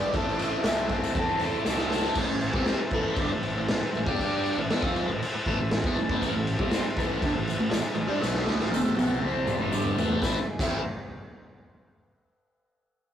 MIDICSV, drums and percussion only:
0, 0, Header, 1, 2, 480
1, 0, Start_track
1, 0, Key_signature, 0, "minor"
1, 0, Tempo, 505476
1, 141, Time_signature, 4, 2, 24, 8
1, 6381, Tempo, 499584
1, 12547, End_track
2, 0, Start_track
2, 0, Title_t, "Drums"
2, 130, Note_on_c, 9, 36, 108
2, 132, Note_on_c, 9, 51, 109
2, 225, Note_off_c, 9, 36, 0
2, 227, Note_off_c, 9, 51, 0
2, 274, Note_on_c, 9, 54, 29
2, 369, Note_off_c, 9, 54, 0
2, 372, Note_on_c, 9, 51, 84
2, 401, Note_on_c, 9, 54, 75
2, 467, Note_off_c, 9, 51, 0
2, 496, Note_off_c, 9, 54, 0
2, 604, Note_on_c, 9, 51, 100
2, 606, Note_on_c, 9, 38, 122
2, 621, Note_on_c, 9, 54, 82
2, 699, Note_off_c, 9, 51, 0
2, 701, Note_off_c, 9, 38, 0
2, 716, Note_off_c, 9, 54, 0
2, 739, Note_on_c, 9, 54, 23
2, 834, Note_off_c, 9, 54, 0
2, 847, Note_on_c, 9, 51, 73
2, 850, Note_on_c, 9, 36, 80
2, 942, Note_off_c, 9, 51, 0
2, 945, Note_off_c, 9, 36, 0
2, 984, Note_on_c, 9, 54, 82
2, 1079, Note_off_c, 9, 54, 0
2, 1093, Note_on_c, 9, 36, 112
2, 1097, Note_on_c, 9, 51, 96
2, 1102, Note_on_c, 9, 54, 31
2, 1188, Note_off_c, 9, 36, 0
2, 1192, Note_off_c, 9, 51, 0
2, 1197, Note_off_c, 9, 54, 0
2, 1222, Note_on_c, 9, 54, 28
2, 1317, Note_off_c, 9, 54, 0
2, 1324, Note_on_c, 9, 51, 66
2, 1341, Note_on_c, 9, 54, 66
2, 1419, Note_off_c, 9, 51, 0
2, 1436, Note_off_c, 9, 54, 0
2, 1470, Note_on_c, 9, 54, 32
2, 1565, Note_off_c, 9, 54, 0
2, 1566, Note_on_c, 9, 38, 76
2, 1576, Note_on_c, 9, 54, 90
2, 1661, Note_off_c, 9, 38, 0
2, 1671, Note_off_c, 9, 54, 0
2, 1688, Note_on_c, 9, 38, 80
2, 1723, Note_on_c, 9, 54, 24
2, 1783, Note_off_c, 9, 38, 0
2, 1808, Note_on_c, 9, 38, 76
2, 1818, Note_off_c, 9, 54, 0
2, 1832, Note_on_c, 9, 54, 74
2, 1903, Note_off_c, 9, 38, 0
2, 1916, Note_on_c, 9, 38, 93
2, 1927, Note_off_c, 9, 54, 0
2, 2011, Note_off_c, 9, 38, 0
2, 2044, Note_on_c, 9, 49, 112
2, 2044, Note_on_c, 9, 57, 83
2, 2049, Note_on_c, 9, 36, 105
2, 2139, Note_off_c, 9, 49, 0
2, 2139, Note_off_c, 9, 57, 0
2, 2144, Note_off_c, 9, 36, 0
2, 2287, Note_on_c, 9, 57, 73
2, 2382, Note_off_c, 9, 57, 0
2, 2407, Note_on_c, 9, 36, 108
2, 2502, Note_off_c, 9, 36, 0
2, 2524, Note_on_c, 9, 57, 75
2, 2526, Note_on_c, 9, 38, 104
2, 2619, Note_off_c, 9, 57, 0
2, 2621, Note_off_c, 9, 38, 0
2, 2760, Note_on_c, 9, 57, 66
2, 2768, Note_on_c, 9, 36, 102
2, 2855, Note_off_c, 9, 57, 0
2, 2863, Note_off_c, 9, 36, 0
2, 3002, Note_on_c, 9, 57, 94
2, 3007, Note_on_c, 9, 36, 107
2, 3097, Note_off_c, 9, 57, 0
2, 3102, Note_off_c, 9, 36, 0
2, 3255, Note_on_c, 9, 57, 62
2, 3350, Note_off_c, 9, 57, 0
2, 3498, Note_on_c, 9, 57, 95
2, 3500, Note_on_c, 9, 38, 119
2, 3593, Note_off_c, 9, 57, 0
2, 3595, Note_off_c, 9, 38, 0
2, 3750, Note_on_c, 9, 57, 54
2, 3845, Note_off_c, 9, 57, 0
2, 3860, Note_on_c, 9, 36, 112
2, 3955, Note_off_c, 9, 36, 0
2, 3982, Note_on_c, 9, 36, 94
2, 3994, Note_on_c, 9, 57, 83
2, 4077, Note_off_c, 9, 36, 0
2, 4089, Note_off_c, 9, 57, 0
2, 4232, Note_on_c, 9, 57, 68
2, 4327, Note_off_c, 9, 57, 0
2, 4466, Note_on_c, 9, 57, 81
2, 4468, Note_on_c, 9, 38, 98
2, 4561, Note_off_c, 9, 57, 0
2, 4563, Note_off_c, 9, 38, 0
2, 4581, Note_on_c, 9, 36, 113
2, 4676, Note_off_c, 9, 36, 0
2, 4711, Note_on_c, 9, 57, 62
2, 4806, Note_off_c, 9, 57, 0
2, 4960, Note_on_c, 9, 57, 84
2, 5055, Note_off_c, 9, 57, 0
2, 5186, Note_on_c, 9, 36, 100
2, 5195, Note_on_c, 9, 57, 54
2, 5281, Note_off_c, 9, 36, 0
2, 5290, Note_off_c, 9, 57, 0
2, 5424, Note_on_c, 9, 57, 85
2, 5426, Note_on_c, 9, 38, 113
2, 5519, Note_off_c, 9, 57, 0
2, 5520, Note_off_c, 9, 38, 0
2, 5544, Note_on_c, 9, 36, 115
2, 5639, Note_off_c, 9, 36, 0
2, 5662, Note_on_c, 9, 57, 55
2, 5757, Note_off_c, 9, 57, 0
2, 5787, Note_on_c, 9, 36, 116
2, 5882, Note_off_c, 9, 36, 0
2, 5906, Note_on_c, 9, 36, 101
2, 5911, Note_on_c, 9, 57, 82
2, 5913, Note_on_c, 9, 54, 70
2, 6001, Note_off_c, 9, 36, 0
2, 6006, Note_off_c, 9, 57, 0
2, 6008, Note_off_c, 9, 54, 0
2, 6144, Note_on_c, 9, 57, 69
2, 6239, Note_off_c, 9, 57, 0
2, 6259, Note_on_c, 9, 36, 103
2, 6353, Note_off_c, 9, 36, 0
2, 6374, Note_on_c, 9, 57, 88
2, 6376, Note_on_c, 9, 38, 112
2, 6389, Note_on_c, 9, 54, 83
2, 6470, Note_off_c, 9, 57, 0
2, 6472, Note_off_c, 9, 38, 0
2, 6485, Note_off_c, 9, 54, 0
2, 6614, Note_on_c, 9, 57, 64
2, 6620, Note_on_c, 9, 36, 101
2, 6651, Note_on_c, 9, 54, 73
2, 6710, Note_off_c, 9, 57, 0
2, 6716, Note_off_c, 9, 36, 0
2, 6747, Note_off_c, 9, 54, 0
2, 6864, Note_on_c, 9, 36, 111
2, 6868, Note_on_c, 9, 57, 91
2, 6960, Note_off_c, 9, 36, 0
2, 6965, Note_off_c, 9, 57, 0
2, 7106, Note_on_c, 9, 57, 66
2, 7129, Note_on_c, 9, 54, 74
2, 7202, Note_off_c, 9, 57, 0
2, 7225, Note_off_c, 9, 54, 0
2, 7335, Note_on_c, 9, 57, 89
2, 7336, Note_on_c, 9, 38, 125
2, 7357, Note_on_c, 9, 54, 93
2, 7431, Note_off_c, 9, 57, 0
2, 7433, Note_off_c, 9, 38, 0
2, 7453, Note_off_c, 9, 54, 0
2, 7563, Note_on_c, 9, 57, 59
2, 7659, Note_off_c, 9, 57, 0
2, 7821, Note_on_c, 9, 38, 60
2, 7836, Note_on_c, 9, 54, 84
2, 7917, Note_off_c, 9, 38, 0
2, 7933, Note_off_c, 9, 54, 0
2, 7947, Note_on_c, 9, 38, 64
2, 8043, Note_off_c, 9, 38, 0
2, 8061, Note_on_c, 9, 38, 76
2, 8157, Note_off_c, 9, 38, 0
2, 8189, Note_on_c, 9, 38, 66
2, 8285, Note_off_c, 9, 38, 0
2, 8297, Note_on_c, 9, 48, 81
2, 8320, Note_on_c, 9, 54, 91
2, 8393, Note_off_c, 9, 48, 0
2, 8417, Note_off_c, 9, 54, 0
2, 8420, Note_on_c, 9, 48, 81
2, 8516, Note_off_c, 9, 48, 0
2, 8540, Note_on_c, 9, 48, 87
2, 8561, Note_on_c, 9, 54, 76
2, 8636, Note_off_c, 9, 48, 0
2, 8657, Note_off_c, 9, 54, 0
2, 8658, Note_on_c, 9, 47, 69
2, 8754, Note_off_c, 9, 47, 0
2, 8777, Note_on_c, 9, 47, 86
2, 8873, Note_off_c, 9, 47, 0
2, 8894, Note_on_c, 9, 47, 83
2, 8990, Note_off_c, 9, 47, 0
2, 9024, Note_on_c, 9, 45, 97
2, 9027, Note_on_c, 9, 54, 68
2, 9120, Note_off_c, 9, 45, 0
2, 9123, Note_off_c, 9, 54, 0
2, 9138, Note_on_c, 9, 45, 85
2, 9234, Note_off_c, 9, 45, 0
2, 9261, Note_on_c, 9, 45, 104
2, 9268, Note_on_c, 9, 54, 82
2, 9357, Note_off_c, 9, 45, 0
2, 9365, Note_off_c, 9, 54, 0
2, 9381, Note_on_c, 9, 43, 85
2, 9477, Note_off_c, 9, 43, 0
2, 9516, Note_on_c, 9, 43, 104
2, 9516, Note_on_c, 9, 54, 75
2, 9612, Note_off_c, 9, 43, 0
2, 9612, Note_off_c, 9, 54, 0
2, 9631, Note_on_c, 9, 43, 86
2, 9727, Note_off_c, 9, 43, 0
2, 9744, Note_on_c, 9, 36, 103
2, 9752, Note_on_c, 9, 38, 83
2, 9756, Note_on_c, 9, 54, 93
2, 9840, Note_off_c, 9, 36, 0
2, 9849, Note_off_c, 9, 38, 0
2, 9852, Note_off_c, 9, 54, 0
2, 10102, Note_on_c, 9, 36, 106
2, 10108, Note_on_c, 9, 49, 100
2, 10115, Note_on_c, 9, 54, 83
2, 10198, Note_off_c, 9, 36, 0
2, 10204, Note_off_c, 9, 49, 0
2, 10211, Note_off_c, 9, 54, 0
2, 12547, End_track
0, 0, End_of_file